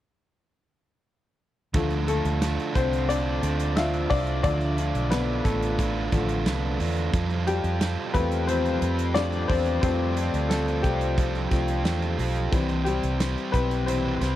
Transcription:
1.74 D2 D3 F3 A3 D4 F4 A4, kick, closed hi-hat
1.90 closed hi-hat
2.07 A3 D4 F4 A4, closed hi-hat
2.25 D2, closed hi-hat
2.41 A3 D4 F4 A4, snare, closed hi-hat
2.60 closed hi-hat
2.74 C2 C4 D4 F4 A4 C5, kick, closed hi-hat
2.93 closed hi-hat
3.08 D3 A3 D4 F4 A4 D5, closed hi-hat
3.41 D2 D4 F4 A4, closed hi-hat
3.60 closed hi-hat
3.75 A3 D4 F4 A4 E5, snare, closed hi-hat
3.94 closed hi-hat
4.09 C2 D4 F4 A4 D5, kick, open hi-hat
4.27 closed hi-hat
4.43 D2 D3 F3 A3 D4 F4 A4 D5, kick, closed hi-hat
4.61 closed hi-hat
4.77 D4 F4 A4, closed hi-hat
4.95 B1, closed hi-hat
5.10 A3 B3 D4 F4 A4 B4, snare, closed hi-hat
5.44 A1 A3 D4 F4 A4, kick, closed hi-hat
5.63 closed hi-hat
5.78 D3 A3 D4 F4 A4, kick, closed hi-hat
6.11 A1 D3 F3 A3 D4 F4 A4, kick, snare, closed hi-hat
6.29 closed hi-hat
6.45 C2 A3 D4 F4 A4, snare, closed hi-hat
6.78 E2 D4 F4 A4, open hi-hat
6.97 closed hi-hat
7.12 F2 F3 G3 C4 F4 A4, kick, closed hi-hat
7.30 closed hi-hat
7.46 G3 C4 F4 G4 A4, closed hi-hat
7.64 F2, closed hi-hat
7.80 G3 C4 F4 A4, snare, closed hi-hat
8.14 E2 G3 A3 C4 F4 A4 B4, kick, closed hi-hat
8.32 closed hi-hat
8.47 F3 G3 C4 F4 A4 C5, closed hi-hat
8.66 closed hi-hat
8.81 F2 C4 F4 A4, closed hi-hat
8.99 closed hi-hat
9.14 F3 G3 A3 C4 D4 F4 A4 D5, snare, closed hi-hat
9.33 closed hi-hat
9.48 E2 C4 F4 A4 C5, kick, open hi-hat
9.66 closed hi-hat
9.81 F2 F3 G3 A3 C4 F4 A4 C5, kick, closed hi-hat
10.16 C4 F4 A4, closed hi-hat
10.34 D2, closed hi-hat
10.49 G3 A3 C4 F4 A4, snare, closed hi-hat
10.68 closed hi-hat
10.82 C2 G3 C4 F4 G4 A4, kick, closed hi-hat
11.01 closed hi-hat
11.17 F3 G3 C4 F4 A4, kick, closed hi-hat
11.35 closed hi-hat
11.50 C2 F3 G3 A3 C4 F4 A4, kick, snare, closed hi-hat
11.68 closed hi-hat
11.84 E2 G3 C4 F4 A4, snare, closed hi-hat
12.02 closed hi-hat
12.18 B1 C4 F4 A4, open hi-hat
12.36 closed hi-hat
12.52 C2 C3 E3 G3 C4 E4 C5, kick, closed hi-hat
12.69 closed hi-hat
12.84 G3 C4 E4 G4 C5, closed hi-hat
13.03 C2, closed hi-hat
13.19 G3 C4 E4 C5, snare, closed hi-hat
13.38 closed hi-hat
13.52 B1 G3 C4 E4 B4 C5, kick, closed hi-hat
13.71 closed hi-hat
13.86 C3 E3 G3 C4 E4 C5, closed hi-hat
14.20 C2 G3 C4 E4 C5, snare, closed hi-hat

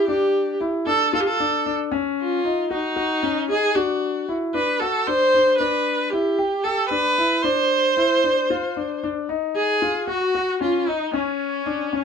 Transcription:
0.08 D4 G4
0.61 E4
0.87 D4 A4
1.13 F4 A4
1.21 G4
1.27 A4
1.40 D4
1.66 D4
1.92 C#4
2.21 F4
2.45 D#4
2.71 D#4 F#4
2.96 F#4
3.23 C#4
3.49 D#4 G#4
3.75 D4 F#4
4.29 E4
4.54 D4 B4
4.80 F#4 A4
5.07 D4 C5
5.34 D4
5.58 D4 B4
6.10 E4 G4
6.39 G4
6.64 G4 A4
6.89 D4 B4
7.18 E4
7.42 D4 C5
7.97 E4
8.24 D4
8.50 F4
8.77 D4
9.03 D4
9.29 D#4
9.56 G#4
9.82 F4
10.07 F#4
10.35 F#4
10.61 C#4 F4
10.87 D#4
11.13 C#4
11.66 D4
11.93 C#4

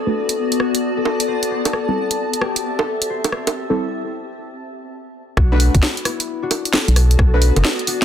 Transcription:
Already playing: B3 E4 F#4 A4 D5 A5
0.06 A3 D4 F#4 B4
0.29 closed hi-hat
0.52 closed hi-hat
0.60 F#4, cross-stick
0.75 closed hi-hat
0.97 A4
1.05 high bongo
1.20 closed hi-hat
1.28 C5
1.43 closed hi-hat
1.51 C4 C5
1.61 G4
1.65 closed hi-hat, high bongo
1.73 A4, cross-stick
1.83 E5
1.88 G3 C4 E4 A4
2.11 closed hi-hat
2.33 closed hi-hat
2.41 G4, cross-stick
2.56 closed hi-hat
2.79 A4, high bongo
3.02 closed hi-hat
3.10 C5
3.24 closed hi-hat, high bongo
3.32 C5, cross-stick
3.47 closed hi-hat, high bongo
3.70 G3 C4 E4 A4
5.37 B1 B3 D4 F#4, kick, cross-stick
5.52 A3 D4 F#4 B4
5.60 open hi-hat
5.75 F#1, kick, closed hi-hat
5.83 snare
5.97 closed hi-hat
6.05 B3 E4, cross-stick, open hi-hat
6.20 closed hi-hat
6.24 D5
6.42 D4 F#4
6.51 open hi-hat, high bongo
6.65 closed hi-hat
6.73 F#4 A4, snare
6.88 B1, closed hi-hat
6.96 F#4 A4, cross-stick, open hi-hat
7.11 closed hi-hat
7.18 B1 F#4 A4, kick, cross-stick
7.34 A3 D4 F#4 B4
7.42 open hi-hat
7.56 F#1, closed hi-hat, high bongo
7.65 snare
7.79 closed hi-hat
7.87 D4 F#4, open hi-hat

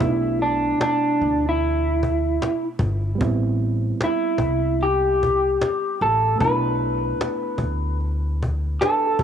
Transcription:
Already playing: B2 E4
0.00 B1 A3 B3 D4, cajon bass
0.06 D#4
0.12 E4
0.40 D4, cajon slap
0.81 D4, cajon slap
1.21 D2, cajon slap
1.49 E4
1.61 cajon slap
2.03 cajon bass
2.42 cajon slap
2.79 G1, cajon bass
3.15 G3 B3
3.21 A1 C4 E4, cajon bass
3.60 cajon slap
4.01 E4, cajon slap
4.38 C2, cajon bass
4.81 G4, cajon slap
5.23 cajon bass
5.61 cajon slap
6.01 A1 A4, cajon slap
6.36 A3 B3
6.40 B1 D4 B4, cajon bass
6.45 E4
6.79 cajon slap
7.21 cajon slap
7.58 D2, cajon bass
8.00 cajon slap
8.42 cajon bass
8.81 D4 A4 B4, cajon slap
9.07 A4
9.19 G1 G4, cajon bass

